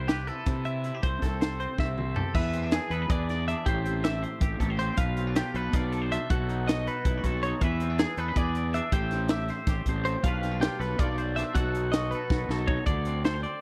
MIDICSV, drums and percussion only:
0, 0, Header, 1, 2, 480
1, 0, Start_track
1, 0, Key_signature, 0, "minor"
1, 0, Tempo, 375940
1, 1319, Time_signature, 7, 3, 24, 8
1, 17379, End_track
2, 0, Start_track
2, 0, Title_t, "Drums"
2, 106, Note_on_c, 9, 42, 76
2, 117, Note_on_c, 9, 38, 101
2, 234, Note_off_c, 9, 42, 0
2, 244, Note_off_c, 9, 38, 0
2, 350, Note_on_c, 9, 42, 53
2, 478, Note_off_c, 9, 42, 0
2, 586, Note_on_c, 9, 42, 74
2, 593, Note_on_c, 9, 36, 100
2, 597, Note_on_c, 9, 38, 30
2, 714, Note_off_c, 9, 42, 0
2, 721, Note_off_c, 9, 36, 0
2, 724, Note_off_c, 9, 38, 0
2, 827, Note_on_c, 9, 42, 50
2, 955, Note_off_c, 9, 42, 0
2, 1071, Note_on_c, 9, 42, 60
2, 1199, Note_off_c, 9, 42, 0
2, 1316, Note_on_c, 9, 42, 63
2, 1318, Note_on_c, 9, 36, 97
2, 1444, Note_off_c, 9, 42, 0
2, 1446, Note_off_c, 9, 36, 0
2, 1560, Note_on_c, 9, 36, 60
2, 1564, Note_on_c, 9, 42, 56
2, 1575, Note_on_c, 9, 38, 31
2, 1687, Note_off_c, 9, 36, 0
2, 1692, Note_off_c, 9, 42, 0
2, 1702, Note_off_c, 9, 38, 0
2, 1804, Note_on_c, 9, 42, 73
2, 1814, Note_on_c, 9, 38, 95
2, 1932, Note_off_c, 9, 42, 0
2, 1942, Note_off_c, 9, 38, 0
2, 2042, Note_on_c, 9, 42, 54
2, 2170, Note_off_c, 9, 42, 0
2, 2278, Note_on_c, 9, 36, 93
2, 2285, Note_on_c, 9, 38, 51
2, 2406, Note_off_c, 9, 36, 0
2, 2413, Note_off_c, 9, 38, 0
2, 2526, Note_on_c, 9, 47, 53
2, 2653, Note_off_c, 9, 47, 0
2, 2757, Note_on_c, 9, 43, 95
2, 2884, Note_off_c, 9, 43, 0
2, 2997, Note_on_c, 9, 36, 99
2, 3001, Note_on_c, 9, 49, 94
2, 3125, Note_off_c, 9, 36, 0
2, 3128, Note_off_c, 9, 49, 0
2, 3234, Note_on_c, 9, 42, 70
2, 3362, Note_off_c, 9, 42, 0
2, 3465, Note_on_c, 9, 42, 88
2, 3475, Note_on_c, 9, 38, 109
2, 3593, Note_off_c, 9, 42, 0
2, 3603, Note_off_c, 9, 38, 0
2, 3715, Note_on_c, 9, 42, 71
2, 3842, Note_off_c, 9, 42, 0
2, 3956, Note_on_c, 9, 36, 110
2, 3957, Note_on_c, 9, 42, 89
2, 4083, Note_off_c, 9, 36, 0
2, 4085, Note_off_c, 9, 42, 0
2, 4204, Note_on_c, 9, 42, 62
2, 4214, Note_on_c, 9, 38, 30
2, 4331, Note_off_c, 9, 42, 0
2, 4342, Note_off_c, 9, 38, 0
2, 4447, Note_on_c, 9, 42, 67
2, 4575, Note_off_c, 9, 42, 0
2, 4677, Note_on_c, 9, 36, 94
2, 4686, Note_on_c, 9, 42, 82
2, 4805, Note_off_c, 9, 36, 0
2, 4814, Note_off_c, 9, 42, 0
2, 4923, Note_on_c, 9, 42, 66
2, 5051, Note_off_c, 9, 42, 0
2, 5158, Note_on_c, 9, 42, 91
2, 5168, Note_on_c, 9, 38, 103
2, 5285, Note_off_c, 9, 42, 0
2, 5296, Note_off_c, 9, 38, 0
2, 5408, Note_on_c, 9, 42, 63
2, 5535, Note_off_c, 9, 42, 0
2, 5632, Note_on_c, 9, 36, 107
2, 5633, Note_on_c, 9, 42, 93
2, 5760, Note_off_c, 9, 36, 0
2, 5761, Note_off_c, 9, 42, 0
2, 5875, Note_on_c, 9, 36, 67
2, 5884, Note_on_c, 9, 42, 60
2, 6003, Note_off_c, 9, 36, 0
2, 6011, Note_off_c, 9, 42, 0
2, 6116, Note_on_c, 9, 42, 67
2, 6244, Note_off_c, 9, 42, 0
2, 6347, Note_on_c, 9, 42, 90
2, 6354, Note_on_c, 9, 36, 97
2, 6475, Note_off_c, 9, 42, 0
2, 6482, Note_off_c, 9, 36, 0
2, 6599, Note_on_c, 9, 42, 69
2, 6726, Note_off_c, 9, 42, 0
2, 6838, Note_on_c, 9, 42, 105
2, 6849, Note_on_c, 9, 38, 117
2, 6966, Note_off_c, 9, 42, 0
2, 6976, Note_off_c, 9, 38, 0
2, 7085, Note_on_c, 9, 42, 69
2, 7213, Note_off_c, 9, 42, 0
2, 7319, Note_on_c, 9, 42, 104
2, 7322, Note_on_c, 9, 36, 110
2, 7329, Note_on_c, 9, 38, 36
2, 7447, Note_off_c, 9, 42, 0
2, 7449, Note_off_c, 9, 36, 0
2, 7457, Note_off_c, 9, 38, 0
2, 7565, Note_on_c, 9, 42, 69
2, 7692, Note_off_c, 9, 42, 0
2, 7812, Note_on_c, 9, 42, 76
2, 7940, Note_off_c, 9, 42, 0
2, 8047, Note_on_c, 9, 36, 110
2, 8055, Note_on_c, 9, 42, 89
2, 8174, Note_off_c, 9, 36, 0
2, 8182, Note_off_c, 9, 42, 0
2, 8291, Note_on_c, 9, 42, 68
2, 8419, Note_off_c, 9, 42, 0
2, 8535, Note_on_c, 9, 42, 96
2, 8545, Note_on_c, 9, 38, 105
2, 8662, Note_off_c, 9, 42, 0
2, 8672, Note_off_c, 9, 38, 0
2, 8775, Note_on_c, 9, 42, 62
2, 8903, Note_off_c, 9, 42, 0
2, 9001, Note_on_c, 9, 42, 84
2, 9004, Note_on_c, 9, 36, 105
2, 9129, Note_off_c, 9, 42, 0
2, 9132, Note_off_c, 9, 36, 0
2, 9242, Note_on_c, 9, 36, 62
2, 9242, Note_on_c, 9, 42, 63
2, 9369, Note_off_c, 9, 36, 0
2, 9370, Note_off_c, 9, 42, 0
2, 9484, Note_on_c, 9, 42, 71
2, 9611, Note_off_c, 9, 42, 0
2, 9718, Note_on_c, 9, 42, 74
2, 9720, Note_on_c, 9, 36, 93
2, 9846, Note_off_c, 9, 42, 0
2, 9848, Note_off_c, 9, 36, 0
2, 9961, Note_on_c, 9, 42, 69
2, 10089, Note_off_c, 9, 42, 0
2, 10197, Note_on_c, 9, 42, 91
2, 10208, Note_on_c, 9, 38, 112
2, 10325, Note_off_c, 9, 42, 0
2, 10335, Note_off_c, 9, 38, 0
2, 10436, Note_on_c, 9, 42, 68
2, 10563, Note_off_c, 9, 42, 0
2, 10673, Note_on_c, 9, 42, 93
2, 10674, Note_on_c, 9, 36, 105
2, 10801, Note_off_c, 9, 42, 0
2, 10802, Note_off_c, 9, 36, 0
2, 10916, Note_on_c, 9, 42, 65
2, 11044, Note_off_c, 9, 42, 0
2, 11156, Note_on_c, 9, 42, 76
2, 11284, Note_off_c, 9, 42, 0
2, 11392, Note_on_c, 9, 36, 100
2, 11392, Note_on_c, 9, 42, 93
2, 11520, Note_off_c, 9, 36, 0
2, 11520, Note_off_c, 9, 42, 0
2, 11630, Note_on_c, 9, 42, 73
2, 11640, Note_on_c, 9, 38, 35
2, 11758, Note_off_c, 9, 42, 0
2, 11768, Note_off_c, 9, 38, 0
2, 11855, Note_on_c, 9, 42, 93
2, 11865, Note_on_c, 9, 38, 109
2, 11983, Note_off_c, 9, 42, 0
2, 11993, Note_off_c, 9, 38, 0
2, 12110, Note_on_c, 9, 42, 68
2, 12120, Note_on_c, 9, 38, 34
2, 12237, Note_off_c, 9, 42, 0
2, 12247, Note_off_c, 9, 38, 0
2, 12344, Note_on_c, 9, 42, 90
2, 12347, Note_on_c, 9, 36, 108
2, 12354, Note_on_c, 9, 38, 37
2, 12471, Note_off_c, 9, 42, 0
2, 12475, Note_off_c, 9, 36, 0
2, 12481, Note_off_c, 9, 38, 0
2, 12588, Note_on_c, 9, 42, 64
2, 12589, Note_on_c, 9, 36, 68
2, 12716, Note_off_c, 9, 42, 0
2, 12717, Note_off_c, 9, 36, 0
2, 12831, Note_on_c, 9, 42, 72
2, 12959, Note_off_c, 9, 42, 0
2, 13072, Note_on_c, 9, 36, 101
2, 13072, Note_on_c, 9, 42, 86
2, 13199, Note_off_c, 9, 36, 0
2, 13200, Note_off_c, 9, 42, 0
2, 13317, Note_on_c, 9, 42, 67
2, 13327, Note_on_c, 9, 38, 33
2, 13445, Note_off_c, 9, 42, 0
2, 13455, Note_off_c, 9, 38, 0
2, 13559, Note_on_c, 9, 42, 83
2, 13569, Note_on_c, 9, 38, 107
2, 13686, Note_off_c, 9, 42, 0
2, 13696, Note_off_c, 9, 38, 0
2, 13806, Note_on_c, 9, 42, 59
2, 13816, Note_on_c, 9, 38, 34
2, 13933, Note_off_c, 9, 42, 0
2, 13944, Note_off_c, 9, 38, 0
2, 14034, Note_on_c, 9, 36, 110
2, 14040, Note_on_c, 9, 42, 94
2, 14161, Note_off_c, 9, 36, 0
2, 14168, Note_off_c, 9, 42, 0
2, 14274, Note_on_c, 9, 42, 62
2, 14401, Note_off_c, 9, 42, 0
2, 14519, Note_on_c, 9, 42, 74
2, 14529, Note_on_c, 9, 38, 37
2, 14647, Note_off_c, 9, 42, 0
2, 14657, Note_off_c, 9, 38, 0
2, 14751, Note_on_c, 9, 36, 102
2, 14753, Note_on_c, 9, 42, 90
2, 14879, Note_off_c, 9, 36, 0
2, 14881, Note_off_c, 9, 42, 0
2, 14998, Note_on_c, 9, 42, 69
2, 15126, Note_off_c, 9, 42, 0
2, 15231, Note_on_c, 9, 42, 92
2, 15241, Note_on_c, 9, 38, 103
2, 15358, Note_off_c, 9, 42, 0
2, 15369, Note_off_c, 9, 38, 0
2, 15473, Note_on_c, 9, 42, 67
2, 15601, Note_off_c, 9, 42, 0
2, 15708, Note_on_c, 9, 36, 112
2, 15720, Note_on_c, 9, 38, 59
2, 15835, Note_off_c, 9, 36, 0
2, 15848, Note_off_c, 9, 38, 0
2, 15961, Note_on_c, 9, 38, 59
2, 16089, Note_off_c, 9, 38, 0
2, 16188, Note_on_c, 9, 36, 102
2, 16316, Note_off_c, 9, 36, 0
2, 16421, Note_on_c, 9, 42, 73
2, 16426, Note_on_c, 9, 36, 88
2, 16548, Note_off_c, 9, 42, 0
2, 16554, Note_off_c, 9, 36, 0
2, 16664, Note_on_c, 9, 42, 60
2, 16792, Note_off_c, 9, 42, 0
2, 16911, Note_on_c, 9, 42, 68
2, 16921, Note_on_c, 9, 38, 101
2, 17039, Note_off_c, 9, 42, 0
2, 17049, Note_off_c, 9, 38, 0
2, 17154, Note_on_c, 9, 42, 52
2, 17282, Note_off_c, 9, 42, 0
2, 17379, End_track
0, 0, End_of_file